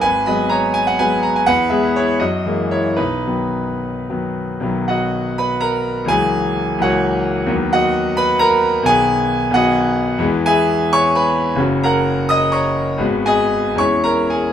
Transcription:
<<
  \new Staff \with { instrumentName = "Grand piano" } { \time 6/8 \key b \major \tempo 4. = 84 <b' gis''>8 <dis'' b''>8 <cis'' ais''>8 gis''16 fis''16 <b' gis''>8 ais''16 gis''16 | <b' fis''>8 <gis' e''>8 <e' cis''>8 <fis' dis''>4 <e' cis''>8 | <dis' b'>2~ <dis' b'>8 r8 | r8 <fis' dis'' fis''>4 <b' b''>8 <ais' ais''>4 |
<gis' gis''>4. <fis' cis'' fis''>4. | r8 <fis' dis'' fis''>4 <b' b''>8 <ais' ais''>4 | <gis' gis''>4. <fis' dis'' fis''>4. | r8 <gis' e'' gis''>4 <cis'' cis'''>8 <b' gis'' b''>4 |
r8 <ais' fis'' ais''>4 <dis'' dis'''>8 <cis'' ais'' cis'''>4 | r8 <gis' dis'' gis''>4 <cis'' cis'''>8 <ais' ais''>8 <gis' gis''>8 | }
  \new Staff \with { instrumentName = "Grand piano" } { \clef bass \time 6/8 \key b \major gis,,8 <fis gis b>4. <fis gis b>4 | e,8 <e gis b>4 fis,8 <e gis ais>4 | b,,8 <dis fis b>4. <dis fis b>4 | <b,, dis fis b>2. |
<cis, e fis ais>4. <cis, e fis ais>4. | <dis, dis fis b>2. | <b,, dis b>4. <b,, dis b>4. | <e, e gis b>2. |
<fis,, cis cis' fis'>2. | <gis,, gis b fis'>4. <e, gis cis' e'>4. | }
>>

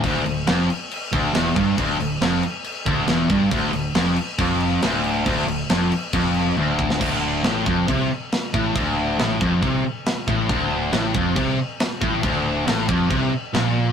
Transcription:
<<
  \new Staff \with { instrumentName = "Distorted electric guitar" } { \clef bass \time 4/4 \key d \minor \tempo 4 = 138 d,8 d,8 f,8 r4 d,8 e,8 g,8 | d,8 d,8 f,8 r4 d,8 e,8 g,8 | d,8 d,8 f,8 r8 f,4 d,4 | d,8 d,8 f,8 r8 f,4 d,4 |
d,4 a,8 f,8 c8 r4 a,8 | d,4 a,8 f,8 c8 r4 a,8 | d,4 a,8 f,8 c8 r4 a,8 | d,4 a,8 f,8 c8 r8 bes,4 | }
  \new Staff \with { instrumentName = "Distorted electric guitar" } { \clef bass \time 4/4 \key d \minor d,8 d,8 f,8 r4 d,8 e,8 g,8 | d,8 d,8 f,8 r4 d,8 e,8 g,8 | d,8 d,8 f,8 r8 f,4 d,4 | d,8 d,8 f,8 r8 f,4 d,4 |
d,4 a,8 f,8 c8 r4 a,8 | d,4 a,8 f,8 c8 r4 a,8 | d,4 a,8 f,8 c8 r4 a,8 | d,4 a,8 f,8 c8 r8 bes,4 | }
  \new Staff \with { instrumentName = "Distorted electric guitar" } { \clef bass \time 4/4 \key d \minor d,8 d,8 f,8 r4 d,8 e,8 g,8 | d,8 d,8 f,8 r4 d,8 e,8 g,8 | d,8 d,8 f,8 r8 f,4 d,4 | d,8 d,8 f,8 r8 f,4 d,4 |
d,4 a,8 f,8 c8 r4 a,8 | d,4 a,8 f,8 c8 r4 a,8 | d,4 a,8 f,8 c8 r4 a,8 | d,4 a,8 f,8 c8 r8 bes,4 | }
  \new Staff \with { instrumentName = "Fingered electric bass" } { \clef bass \time 4/4 \key d \minor d,,8 d,,8 f,,8 r4 d,,8 e,,8 g,,8 | d,,8 d,,8 f,,8 r4 d,,8 e,,8 g,,8 | d,,8 d,,8 f,,8 r8 f,,4 d,,4 | d,,8 d,,8 f,,8 r8 f,,4 d,,4 |
d,,4 a,,8 f,,8 c,8 r4 a,,8 | d,,4 a,,8 f,,8 c,8 r4 a,,8 | d,,4 a,,8 f,,8 c,8 r4 a,,8 | d,,4 a,,8 f,,8 c,8 r8 bes,,4 | }
  \new DrumStaff \with { instrumentName = "Drums" } \drummode { \time 4/4 <cymc bd>8 cymc8 <cymc sn>8 cymc8 cymc8 <cymc bd>8 <cymc sn>8 <cymc bd>8 | <cymc bd>8 cymc8 <cymc sn>8 cymc8 cymc8 <cymc bd>8 <cymc sn>8 <cymc bd>8 | <cymc bd>8 cymc8 <cymc sn>8 cymc8 <cymc bd>8 cymc8 <cymc sn>8 cymc8 | <cymc bd>8 cymc8 <cymc sn>8 cymc8 <cymc bd>8 cymc8 tommh8 bd16 sn16 |
<cymc bd>4 <cymc sn>8 bd8 <cymc bd>4 <cymc sn>8 bd8 | <cymc bd>4 <cymc sn>8 bd8 <cymc bd>4 <cymc sn>8 bd8 | <cymc bd>4 <cymc sn>8 bd8 <cymc bd>4 <cymc sn>8 bd8 | <cymc bd>4 <cymc sn>8 bd8 <cymc bd>4 <cymc sn>4 | }
>>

